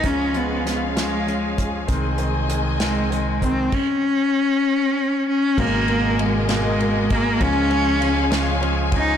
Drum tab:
CC |------|------|x-----|x-----|
RD |------|------|------|-xxxxx|
HH |xxxxxx|xxxxxx|------|------|
SD |--oo--|---o--|------|---o--|
BD |o----o|o----o|o-----|o----o|

CC |------|
RD |xxxxxx|
HH |------|
SD |---o--|
BD |o----o|